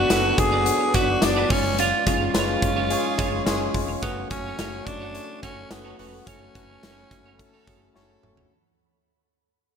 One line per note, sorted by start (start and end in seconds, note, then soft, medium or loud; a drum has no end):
0.00 0.10 B3 medium
0.00 0.10 D4 medium
0.00 0.10 F#4 medium
0.00 0.41 F#4 loud
0.00 1.49 B4 medium
0.00 0.39 D5 loud
0.00 1.49 D5 medium
0.00 1.46 F#5 medium
0.00 1.49 D6 medium
0.10 0.30 F#1 medium
0.10 0.35 B3 medium
0.10 0.25 D4 medium
0.10 0.35 D4 medium
0.10 0.24 F#4 medium
0.10 0.35 F#4 medium
0.10 0.35 A4 loud
0.10 0.23 B4 medium
0.10 0.23 D5 medium
0.10 snare loud
0.10 closed hi-hat medium
0.10 tambourine medium
0.24 muted clean electric guitar stroke soft
0.37 0.68 F#1 medium
0.37 0.63 B3 medium
0.37 0.63 D4 medium
0.37 0.63 F#4 medium
0.37 0.97 G#4 loud
0.37 0.63 D5 medium
0.37 muted clean electric guitar stroke soft
0.37 kick medium
0.37 closed hi-hat medium
0.52 0.64 D4 medium
0.52 0.64 F#4 medium
0.52 0.64 B4 medium
0.52 0.64 D5 medium
0.65 0.90 B3 medium
0.65 0.91 D4 medium
0.65 0.91 F#4 medium
0.65 0.91 C#5 medium
0.65 muted clean electric guitar stroke soft
0.65 closed hi-hat medium
0.80 muted clean electric guitar stroke medium
0.93 1.15 F#1 loud
0.93 1.19 B3 medium
0.93 1.19 D4 medium
0.93 1.09 D4 medium
0.93 1.19 F#4 medium
0.93 1.08 F#4 medium
0.93 1.25 F#4 medium
0.93 1.08 B4 medium
0.93 1.19 D5 medium
0.93 1.07 D5 medium
0.93 kick loud
0.93 closed hi-hat medium
1.08 muted clean electric guitar stroke medium
1.22 1.42 F#1 loud
1.22 1.47 B3 loud
1.22 1.47 D4 medium
1.22 1.53 D4 medium
1.22 1.47 F#4 medium
1.22 1.47 D5 loud
1.22 muted clean electric guitar stroke soft
1.22 snare loud
1.22 closed hi-hat medium
1.22 tambourine medium
1.36 1.48 D4 medium
1.36 1.48 F#4 medium
1.36 1.48 B4 medium
1.36 1.48 D5 medium
1.49 1.91 F#1 medium
1.49 1.99 G#3 medium
1.49 2.00 C#4 medium
1.49 1.65 C#4 medium
1.49 1.79 C#4 medium
1.49 2.00 F4 medium
1.49 1.64 F4 medium
1.49 4.00 G#4 medium
1.49 1.64 G#4 medium
1.49 8.47 C#5 medium
1.49 1.63 C#5 medium
1.49 4.00 F5 medium
1.49 4.00 C#6 medium
1.49 kick loud
1.49 open hi-hat medium
1.65 muted clean electric guitar stroke medium
1.78 1.93 C#4 medium
1.78 1.93 F4 medium
1.78 2.05 F4 loud
1.78 1.93 G#4 medium
1.78 1.94 C#5 medium
1.78 closed hi-hat loud
2.06 2.27 F#1 medium
2.06 2.31 G#3 medium
2.06 2.31 C#4 medium
2.06 2.18 C#4 medium
2.06 2.31 F4 medium
2.06 2.18 F4 medium
2.06 3.71 F4 loud
2.06 2.31 G#4 medium
2.06 2.18 G#4 medium
2.06 2.18 C#5 medium
2.06 kick medium
2.06 closed hi-hat medium
2.20 2.32 C#4 medium
2.20 2.32 F4 medium
2.20 2.32 G#4 medium
2.20 2.32 C#5 medium
2.34 2.54 F#1 medium
2.34 2.59 G#3 medium
2.34 2.49 C#4 medium
2.34 2.59 C#4 medium
2.34 2.48 F4 medium
2.34 2.59 F4 medium
2.34 2.48 G#4 medium
2.34 2.59 B4 loud
2.34 2.47 C#5 medium
2.34 snare loud
2.34 closed hi-hat medium
2.34 tambourine medium
2.48 muted clean electric guitar stroke medium
2.62 2.93 F#1 loud
2.62 2.87 G#3 medium
2.62 2.87 C#4 medium
2.62 2.92 C#4 loud
2.62 2.87 F4 medium
2.62 2.88 C#5 medium
2.62 muted clean electric guitar stroke medium
2.62 kick loud
2.62 closed hi-hat medium
2.76 2.88 C#4 medium
2.76 2.88 F4 medium
2.76 2.88 G#4 medium
2.76 2.88 C#5 medium
2.90 3.15 G#3 medium
2.90 3.15 C#4 medium
2.90 3.15 F4 medium
2.90 3.46 G#4 loud
2.90 3.16 C#5 loud
2.90 muted clean electric guitar stroke soft
2.90 closed hi-hat medium
3.04 muted clean electric guitar stroke soft
3.18 3.39 F#1 medium
3.18 3.43 G#3 medium
3.18 3.43 C#4 medium
3.18 3.33 C#4 medium
3.18 3.32 F4 medium
3.18 3.43 F4 medium
3.18 3.32 G#4 medium
3.18 3.44 C#5 loud
3.18 3.31 C#5 medium
3.18 kick loud
3.18 closed hi-hat medium
3.33 muted clean electric guitar stroke medium
3.46 3.67 F#1 loud
3.46 3.71 G#3 loud
3.46 3.71 C#4 loud
3.46 3.71 F4 loud
3.46 3.86 G#4 loud
3.46 3.72 C#5 loud
3.46 muted clean electric guitar stroke soft
3.46 snare loud
3.46 closed hi-hat medium
3.46 tambourine medium
3.60 muted clean electric guitar stroke soft
3.74 3.95 F1 medium
3.74 3.99 G#3 medium
3.74 3.99 C#4 medium
3.74 3.99 F4 medium
3.74 4.00 C#5 loud
3.74 kick medium
3.74 open hi-hat medium
3.89 muted clean electric guitar stroke soft
4.02 4.23 F#1 loud
4.02 4.27 A3 loud
4.02 4.29 B3 loud
4.02 4.27 C#4 medium
4.02 4.17 C#4 medium
4.02 4.27 F#4 medium
4.02 4.18 F#4 medium
4.02 8.47 A4 medium
4.02 4.18 A4 medium
4.02 4.28 C#5 loud
4.02 4.18 C#5 loud
4.02 8.47 F#5 medium
4.02 6.25 C#6 medium
4.02 kick loud
4.02 closed hi-hat loud
4.30 4.51 F#1 medium
4.30 4.55 A3 medium
4.30 4.55 C#4 medium
4.30 4.42 C#4 medium
4.30 4.88 C#4 loud
4.30 4.56 F#4 medium
4.30 4.42 F#4 medium
4.30 4.43 A4 medium
4.30 4.56 C#5 medium
4.30 4.43 C#5 medium
4.30 kick medium
4.30 closed hi-hat medium
4.45 4.57 C#4 medium
4.45 4.57 F#4 medium
4.45 4.56 A4 medium
4.45 4.56 C#5 medium
4.58 4.79 F#1 medium
4.58 4.83 A3 loud
4.58 4.83 C#4 medium
4.58 4.73 C#4 medium
4.58 4.84 F#4 medium
4.58 4.72 F#4 medium
4.58 4.72 A4 medium
4.58 4.84 C#5 loud
4.58 4.71 C#5 medium
4.58 snare loud
4.58 closed hi-hat medium
4.58 tambourine medium
4.73 muted clean electric guitar stroke soft
4.86 5.17 F#1 medium
4.86 5.11 A3 medium
4.86 5.11 C#4 medium
4.86 5.42 D4 loud
4.86 5.12 F#4 medium
4.86 5.12 C#5 medium
4.86 muted clean electric guitar stroke soft
4.86 kick loud
4.86 closed hi-hat medium
5.01 5.13 C#4 medium
5.01 5.13 F#4 medium
5.01 5.13 A4 medium
5.01 5.12 C#5 medium
5.14 5.39 A3 medium
5.14 5.39 C#4 medium
5.14 5.40 F#4 medium
5.14 5.40 C#5 medium
5.14 closed hi-hat medium
5.29 muted clean electric guitar stroke soft
5.42 5.63 F#1 loud
5.42 5.67 A3 medium
5.42 5.67 C#4 medium
5.42 5.72 C#4 loud
5.42 5.58 C#4 medium
5.42 5.68 F#4 medium
5.42 5.56 F#4 medium
5.42 5.56 A4 medium
5.42 5.68 C#5 medium
5.42 5.56 C#5 medium
5.42 kick loud
5.42 closed hi-hat medium
5.57 muted clean electric guitar stroke medium
5.70 5.91 F#1 loud
5.70 5.95 A3 loud
5.70 5.98 B3 medium
5.70 5.95 C#4 medium
5.70 5.96 F#4 medium
5.70 5.96 C#5 loud
5.70 muted clean electric guitar stroke soft
5.70 snare loud
5.70 closed hi-hat medium
5.70 tambourine medium
5.85 5.97 C#4 medium
5.85 5.97 F#4 medium
5.85 5.96 A4 medium
5.85 5.96 C#5 medium
5.98 6.19 F1 medium
5.98 6.23 A3 medium
5.98 6.28 B3 medium
5.98 6.24 C#4 medium
5.98 6.14 C#4 medium
5.98 6.24 F#4 medium
5.98 6.12 F#4 medium
5.98 6.12 A4 medium
5.98 6.24 B4 medium
5.98 6.12 C#5 medium
5.98 open hi-hat medium
6.13 muted clean electric guitar stroke soft
6.26 6.47 F#1 loud
6.26 6.51 A3 medium
6.26 6.42 C#4 medium
6.26 6.52 C#4 medium
6.26 7.95 C#4 loud
6.26 6.52 F#4 medium
6.26 6.42 F#4 medium
6.26 6.42 A4 medium
6.26 6.52 C#5 loud
6.26 6.42 C#5 medium
6.26 8.49 B5 medium
6.26 kick loud
6.26 closed hi-hat loud
6.55 6.75 F#1 loud
6.55 6.80 A3 medium
6.55 6.80 C#4 medium
6.55 6.67 C#4 medium
6.55 6.67 F#4 medium
6.55 6.80 F#4 medium
6.55 6.67 A4 medium
6.55 6.80 B4 medium
6.55 6.67 C#5 medium
6.55 kick medium
6.55 closed hi-hat medium
6.69 6.81 C#4 medium
6.69 6.81 F#4 medium
6.69 6.81 A4 medium
6.69 6.81 C#5 medium
6.83 7.03 F#1 medium
6.83 7.08 A3 medium
6.83 7.08 C#4 medium
6.83 6.98 C#4 medium
6.83 7.35 F#4 medium
6.83 7.08 F#4 medium
6.83 6.97 F#4 medium
6.83 6.97 A4 medium
6.83 7.08 C#5 loud
6.83 6.96 C#5 medium
6.83 snare loud
6.83 closed hi-hat medium
6.83 tambourine medium
6.97 muted clean electric guitar stroke medium
7.11 7.41 F#1 medium
7.11 7.36 A3 medium
7.11 7.36 C#4 medium
7.11 7.36 F#4 medium
7.11 7.36 C#5 medium
7.11 muted clean electric guitar stroke soft
7.11 kick medium
7.11 closed hi-hat medium
7.26 7.37 C#4 medium
7.26 7.37 F#4 medium
7.26 7.37 A4 medium
7.26 7.37 C#5 medium
7.39 7.64 A3 medium
7.39 7.64 C#4 medium
7.39 7.64 F#4 medium
7.39 7.91 A4 loud
7.39 7.64 A4 loud
7.39 muted clean electric guitar stroke soft
7.39 kick medium
7.39 closed hi-hat medium
7.53 7.66 C#4 medium
7.53 7.66 F#4 medium
7.53 7.67 A4 medium
7.53 7.67 C#5 medium
7.67 7.88 F#1 loud
7.67 7.92 A3 medium
7.67 7.92 C#4 medium
7.67 7.79 C#4 medium
7.67 7.92 F#4 medium
7.67 7.79 F#4 medium
7.67 7.92 G#4 medium
7.67 7.79 A4 medium
7.67 7.79 C#5 medium
7.67 kick loud
7.67 closed hi-hat medium
7.81 muted clean electric guitar stroke soft
7.95 8.16 F#1 loud
7.95 8.20 A3 loud
7.95 8.20 C#4 loud
7.95 8.20 F#4 loud
7.95 8.47 A4 loud
7.95 8.20 C#5 loud
7.95 muted clean electric guitar stroke soft
7.95 snare medium
8.09 muted clean electric guitar stroke soft
8.23 8.44 F1 medium
8.23 8.48 A3 medium
8.23 8.48 C#4 medium
8.23 8.48 F#4 medium
8.23 8.48 C#5 medium
8.23 mid tom medium
8.37 muted clean electric guitar stroke soft
8.37 floor tom medium